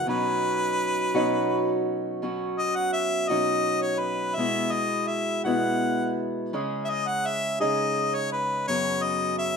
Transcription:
0.06 1.15 B2 medium
0.06 1.15 F#3 medium
0.06 1.15 C#4 medium
0.06 1.14 D#4 medium
0.06 1.13 F#4 medium
0.06 1.83 B4 medium
1.15 2.21 B2 medium
1.15 2.22 F#3 medium
1.15 2.22 C#4 medium
1.15 2.23 D#4 medium
1.15 2.23 F#4 medium
2.22 3.30 B2 medium
2.22 3.31 F#3 medium
2.22 3.30 C#4 medium
2.22 3.29 F#4 medium
2.58 2.77 D#5 medium
2.75 2.92 F#5 medium
2.92 3.30 E5 medium
3.29 4.37 B2 soft
3.29 4.37 F#3 medium
3.29 4.38 C#4 medium
3.29 4.38 D#4 medium
3.29 4.38 F#4 medium
3.29 3.83 D#5 medium
3.82 4.00 C#5 medium
3.99 4.36 B4 medium
4.35 5.45 B2 medium
4.35 5.46 G#3 medium
4.35 4.73 E5 medium
4.39 5.45 B3 medium
4.39 5.44 E4 medium
4.39 5.44 F#4 medium
4.71 5.09 D#5 medium
5.07 5.43 E5 medium
5.44 6.53 B2 medium
5.44 6.52 G#3 medium
5.44 6.53 B3 medium
5.44 6.53 E4 medium
5.44 6.53 F#4 medium
5.44 6.21 F#5 medium
6.53 7.61 C#3 medium
6.53 7.61 G#3 medium
6.53 7.61 C#4 medium
6.53 7.59 G#4 medium
6.84 6.91 E5 medium
6.90 7.09 D#5 medium
7.08 7.28 F#5 medium
7.27 7.60 E5 medium
7.60 8.67 C#3 soft
7.60 8.69 G#3 medium
7.60 8.69 C#4 medium
7.60 8.68 D#4 medium
7.60 8.68 G#4 medium
7.60 8.16 D#5 medium
8.15 8.32 C#5 medium
8.32 8.66 B4 medium
8.67 9.57 F#2 medium
8.67 9.57 C#3 medium
8.67 9.57 F#3 medium
8.67 9.57 B3 medium
8.67 9.57 C#4 medium
8.67 9.57 F#4 medium
8.67 9.04 C#5 medium
9.02 9.38 D#5 medium
9.38 9.57 E5 medium

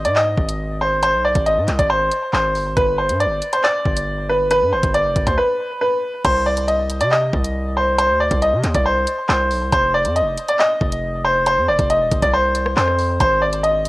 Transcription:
0.05 0.36 G#2 loud
0.05 0.14 D5 medium
0.05 closed hi-hat medium
0.16 0.77 D#5 medium
0.16 clap loud
0.38 1.15 G#1 loud
0.38 kick loud
0.49 closed hi-hat medium
0.81 1.00 C5 medium
1.03 1.22 C5 loud
1.03 closed hi-hat medium
1.14 1.34 B1 loud
1.25 1.44 D5 medium
1.35 1.59 G#1 loud
1.35 kick loud
1.35 closed hi-hat medium
1.46 1.77 D#5 medium
1.46 closed hi-hat medium
1.57 1.67 G#2 loud
1.68 1.78 C2 loud
1.68 clap medium
1.68 closed hi-hat medium
1.79 2.10 G#1 loud
1.79 1.88 D5 medium
1.79 kick medium
1.79 closed hi-hat medium
1.90 2.31 C5 loud
2.11 closed hi-hat medium
2.33 2.56 G#1 loud
2.33 2.74 C5 medium
2.33 clap loud
2.55 2.67 G1 loud
2.55 open hi-hat medium
2.66 2.76 G#1 loud
2.77 3.11 G1 loud
2.77 2.96 B4 loud
2.77 kick loud
2.77 closed hi-hat medium
2.98 3.17 C5 medium
3.09 3.27 G2 loud
3.09 closed hi-hat medium
3.20 3.51 D5 medium
3.20 closed hi-hat medium
3.26 3.41 G1 loud
3.42 closed hi-hat medium
3.53 3.62 C5 medium
3.53 closed hi-hat medium
3.64 4.25 D5 loud
3.64 clap loud
3.85 4.63 G1 loud
3.85 kick loud
3.97 closed hi-hat medium
4.29 4.48 B4 medium
4.51 4.70 B4 loud
4.51 closed hi-hat medium
4.62 4.74 G2 loud
4.72 4.83 G1 loud
4.72 4.91 C5 medium
4.83 5.07 G1 loud
4.83 kick medium
4.83 closed hi-hat medium
4.94 5.25 D5 medium
4.94 closed hi-hat medium
5.05 5.15 F1 loud
5.16 5.26 G1 loud
5.16 kick medium
5.16 closed hi-hat medium
5.27 5.37 D2 loud
5.27 5.36 C5 medium
5.27 kick medium
5.27 closed hi-hat medium
5.38 5.78 B4 medium
5.81 6.22 B4 medium
6.25 7.02 C2 loud
6.25 6.44 C5 loud
6.25 kick loud
6.25 closed hi-hat medium
6.25 crash loud
6.46 6.65 D5 medium
6.57 closed hi-hat medium
6.68 6.99 D#5 medium
6.68 closed hi-hat medium
6.90 closed hi-hat medium
7.01 7.32 C3 loud
7.01 7.10 D5 medium
7.01 closed hi-hat medium
7.11 7.73 D#5 medium
7.11 clap loud
7.33 8.11 C2 loud
7.33 kick loud
7.44 closed hi-hat medium
7.77 7.96 C5 medium
7.98 8.17 C5 loud
7.98 closed hi-hat medium
8.09 8.30 D2 loud
8.20 8.39 D5 medium
8.31 8.54 C2 loud
8.31 kick loud
8.31 closed hi-hat medium
8.42 8.73 D#5 medium
8.42 closed hi-hat medium
8.53 8.63 C3 loud
8.64 8.74 D#2 loud
8.64 clap medium
8.64 closed hi-hat medium
8.75 9.06 C2 loud
8.75 8.84 D5 medium
8.75 kick loud
8.75 closed hi-hat medium
8.85 9.26 C5 medium
9.07 closed hi-hat medium
9.29 9.52 C2 loud
9.29 9.70 C5 medium
9.29 clap loud
9.51 9.63 B1 loud
9.51 open hi-hat medium
9.62 9.72 C2 loud
9.72 10.07 F1 loud
9.72 9.91 C5 loud
9.72 kick loud
9.72 closed hi-hat medium
9.94 10.13 D5 medium
10.05 10.23 F2 loud
10.05 closed hi-hat medium
10.16 10.46 D#5 medium
10.16 closed hi-hat medium
10.21 10.37 F1 loud
10.38 closed hi-hat medium
10.49 10.58 D5 medium
10.49 closed hi-hat medium
10.59 11.21 D#5 loud
10.59 clap loud
10.81 11.59 F1 loud
10.81 kick loud
10.92 closed hi-hat medium
11.24 11.43 C5 medium
11.46 11.65 C5 loud
11.46 closed hi-hat medium
11.57 11.70 F2 loud
11.68 11.78 F1 loud
11.68 11.87 D5 medium
11.79 12.02 F1 loud
11.79 kick loud
11.79 closed hi-hat medium
11.90 12.21 D#5 medium
11.90 closed hi-hat medium
12.01 12.11 D#1 loud
12.12 12.22 F1 loud
12.12 kick loud
12.12 closed hi-hat medium
12.22 12.75 C2 loud
12.22 12.32 D5 medium
12.22 kick loud
12.22 closed hi-hat medium
12.33 12.74 C5 loud
12.55 closed hi-hat medium
12.66 cross-stick loud
12.77 13.18 F2 loud
12.77 13.18 C5 medium
12.77 clap loud
12.88 cross-stick medium
12.99 open hi-hat medium
13.20 13.89 G#1 loud
13.20 13.39 C5 loud
13.20 kick loud
13.20 closed hi-hat medium
13.42 13.61 D5 medium
13.53 closed hi-hat medium
13.63 13.89 D#5 medium
13.63 closed hi-hat medium
13.85 closed hi-hat medium

